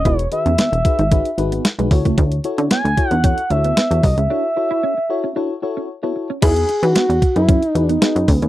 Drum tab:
CC |----------------|----------------|----------------|x---------------|
HH |xxxxxxxxxxxxxxox|xxxxxxxxxxxxxxox|----------------|xxxxxxxxxxxxxxox|
SD |----o-------o---|----o-------o---|----------------|----o-------o---|
BD |o-----o-o-----oo|o-----o-o-----o-|----------------|o-----o-o-----o-|